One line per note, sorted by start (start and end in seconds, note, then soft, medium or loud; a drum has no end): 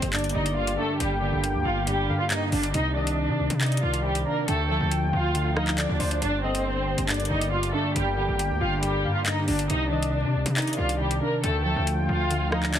0.00 0.34 G1 loud
0.00 0.12 G2 medium
0.00 0.34 D3 medium
0.00 2.71 D3 medium
0.00 2.71 A#3 medium
0.00 2.71 G4 medium
0.00 closed hi-hat medium
0.13 0.55 G2 medium
0.13 0.30 D4 medium
0.13 0.96 D5 loud
0.13 0.30 D5 medium
0.13 clap loud
0.13 closed hi-hat medium
0.19 closed hi-hat medium
0.24 closed hi-hat medium
0.29 closed hi-hat medium
0.35 0.77 G1 loud
0.35 1.21 D3 medium
0.35 0.52 D#4 medium
0.35 0.52 D#5 medium
0.46 closed hi-hat medium
0.56 0.99 G2 medium
0.56 0.73 F4 medium
0.56 0.73 F5 medium
0.67 closed hi-hat medium
0.78 0.96 A3 medium
0.78 1.87 D4 loud
0.78 0.95 A4 medium
1.00 1.31 G1 loud
1.00 1.86 G2 loud
1.00 1.17 G3 medium
1.00 1.16 G4 medium
1.00 2.05 G5 loud
1.00 closed hi-hat medium
1.22 2.08 D3 medium
1.22 1.39 G3 medium
1.22 1.38 G4 medium
1.33 1.56 G1 loud
1.44 closed hi-hat medium
1.54 1.65 D2 loud
1.65 2.10 G1 loud
1.65 1.82 F4 medium
1.65 1.82 F5 medium
1.87 2.29 G2 medium
1.87 2.18 G3 medium
1.87 2.18 G4 medium
1.87 closed hi-hat medium
2.09 2.19 G2 loud
2.09 2.74 D3 medium
2.09 2.30 F5 medium
2.20 2.28 F4 medium
2.20 2.28 F5 medium
2.30 2.74 G2 medium
2.30 2.47 D#4 loud
2.30 2.47 D#5 medium
2.30 clap loud
2.30 closed hi-hat medium
2.52 2.73 G1 loud
2.52 2.74 D4 medium
2.52 2.69 D4 medium
2.52 2.70 D5 medium
2.52 open hi-hat soft
2.63 closed hi-hat medium
2.74 3.30 C2 loud
2.74 4.46 C3 medium
2.74 3.60 C3 loud
2.74 4.46 D#3 medium
2.74 4.46 D4 medium
2.74 2.90 D#4 loud
2.74 2.91 D#5 medium
2.74 closed hi-hat medium
2.96 3.82 D#3 medium
2.96 3.57 D4 medium
2.96 3.58 D5 medium
2.96 3.17 D#5 medium
3.07 closed hi-hat medium
3.28 3.41 C3 loud
3.39 3.50 C2 loud
3.50 3.81 C3 loud
3.50 closed hi-hat medium
3.61 4.03 C3 medium
3.61 3.78 D#4 medium
3.61 4.44 D5 medium
3.61 3.78 D#5 medium
3.61 clap loud
3.61 closed hi-hat medium
3.66 closed hi-hat medium
3.72 closed hi-hat medium
3.77 closed hi-hat medium
3.83 4.24 C2 loud
3.83 4.48 D#3 medium
3.83 3.99 F4 medium
3.83 4.00 F5 medium
3.94 closed hi-hat medium
4.04 4.48 C3 medium
4.04 4.21 G3 medium
4.04 4.21 G4 medium
4.15 closed hi-hat medium
4.26 4.43 A#3 medium
4.26 4.48 D4 medium
4.26 4.43 A#4 medium
4.48 4.79 D2 loud
4.48 5.34 D3 medium
4.48 9.66 D3 medium
4.48 6.20 A3 medium
4.48 4.65 A3 medium
4.48 6.20 F4 medium
4.48 4.65 A4 loud
4.48 5.53 G5 loud
4.48 closed hi-hat medium
4.69 5.56 F3 medium
4.69 4.87 A3 medium
4.69 4.86 A4 medium
4.81 5.04 D2 loud
4.91 closed hi-hat medium
5.02 5.13 D#2 loud
5.13 5.86 D2 loud
5.13 5.54 F4 medium
5.13 5.55 F5 medium
5.35 5.77 D3 medium
5.35 closed hi-hat medium
5.56 6.22 F3 medium
5.56 5.73 D#4 medium
5.56 5.74 D#5 medium
5.56 5.77 F5 medium
5.56 cross-stick medium
5.67 clap medium
5.78 6.22 D3 medium
5.78 6.19 D4 medium
5.78 5.99 D5 loud
5.78 6.20 D5 medium
5.78 clap loud
5.78 closed hi-hat medium
5.89 6.00 D2 loud
6.00 6.21 D2 loud
6.00 6.21 C5 medium
6.00 6.22 D5 medium
6.00 open hi-hat soft
6.11 closed hi-hat medium
6.21 6.95 G1 loud
6.21 7.08 G2 medium
6.21 9.66 A#3 medium
6.21 6.38 D4 loud
6.21 9.66 G4 medium
6.21 6.39 D5 medium
6.21 closed hi-hat medium
6.43 7.29 D3 medium
6.43 7.05 C4 medium
6.43 7.05 C5 medium
6.43 6.64 D#5 medium
6.55 closed hi-hat medium
6.98 7.29 G1 loud
6.98 closed hi-hat medium
7.09 7.51 G2 loud
7.09 7.25 D4 medium
7.09 7.92 D5 loud
7.09 7.26 D5 medium
7.09 clap loud
7.09 closed hi-hat medium
7.14 closed hi-hat medium
7.20 closed hi-hat medium
7.25 closed hi-hat medium
7.31 7.72 G1 loud
7.31 8.16 D3 medium
7.31 7.47 D#4 medium
7.31 7.48 D#5 medium
7.41 closed hi-hat medium
7.52 7.95 G2 medium
7.52 7.69 F4 medium
7.52 7.69 F5 medium
7.63 closed hi-hat medium
7.74 7.91 A3 medium
7.74 8.83 D4 loud
7.74 7.91 A4 medium
7.95 8.27 G1 loud
7.95 8.82 G2 loud
7.95 8.13 G3 medium
7.95 8.12 G4 medium
7.95 9.00 G5 loud
7.95 closed hi-hat medium
8.17 9.04 D3 medium
8.17 8.34 G3 medium
8.17 8.34 G4 medium
8.28 8.52 G1 loud
8.39 closed hi-hat medium
8.50 8.60 D2 loud
8.61 9.06 G1 loud
8.61 8.77 F4 medium
8.61 8.78 F5 medium
8.83 9.25 G2 medium
8.83 9.14 G3 medium
8.83 9.13 G4 medium
8.83 closed hi-hat medium
9.04 9.15 G2 loud
9.04 9.70 D3 medium
9.04 9.25 F5 medium
9.15 9.24 F4 medium
9.15 9.24 F5 medium
9.26 9.70 G2 medium
9.26 9.43 D#4 loud
9.26 9.43 D#5 medium
9.26 clap loud
9.26 closed hi-hat medium
9.48 9.69 G1 loud
9.48 9.70 D4 medium
9.48 9.65 D4 medium
9.48 9.65 D5 medium
9.48 open hi-hat soft
9.59 closed hi-hat medium
9.69 10.26 C2 loud
9.69 11.42 C3 medium
9.69 10.55 C3 loud
9.69 11.42 D#3 medium
9.69 11.42 D4 medium
9.69 9.86 D#4 loud
9.69 9.87 D#5 medium
9.69 closed hi-hat medium
9.91 10.77 D#3 medium
9.91 10.53 D4 medium
9.91 10.53 D5 medium
9.91 10.12 D#5 medium
10.02 closed hi-hat medium
10.24 10.36 C3 loud
10.35 10.45 C2 loud
10.46 10.77 C3 loud
10.46 closed hi-hat medium
10.56 10.99 C3 medium
10.56 10.73 D#4 medium
10.56 11.39 D5 medium
10.56 10.74 D#5 medium
10.56 clap loud
10.56 closed hi-hat medium
10.62 closed hi-hat medium
10.67 closed hi-hat medium
10.73 closed hi-hat medium
10.78 11.20 C2 loud
10.78 11.44 D#3 medium
10.78 10.95 F4 medium
10.78 10.95 F5 medium
10.89 closed hi-hat medium
11.00 11.44 C3 medium
11.00 11.17 G3 medium
11.00 11.17 G4 medium
11.11 closed hi-hat medium
11.22 11.39 A#3 medium
11.22 11.44 D4 medium
11.22 11.39 A#4 medium
11.43 11.75 D2 loud
11.43 12.29 D3 loud
11.43 12.79 D3 medium
11.43 12.79 A3 medium
11.43 11.61 A3 medium
11.43 12.79 F4 medium
11.43 11.60 A4 medium
11.43 12.48 G5 loud
11.43 closed hi-hat medium
11.65 12.51 F3 medium
11.65 11.82 A3 medium
11.65 11.82 A4 medium
11.76 11.99 D2 loud
11.87 closed hi-hat medium
11.98 12.08 D#2 loud
12.09 12.79 D2 loud
12.09 12.50 F4 medium
12.09 12.50 F5 medium
12.31 12.73 D3 loud
12.31 closed hi-hat medium
12.52 12.79 F3 medium
12.52 12.69 D#4 medium
12.52 12.69 D#5 medium
12.52 12.73 F5 medium
12.52 cross-stick loud
12.63 clap medium
12.74 12.79 D3 medium
12.74 12.79 D4 medium
12.74 12.79 D5 medium
12.74 clap loud
12.74 closed hi-hat medium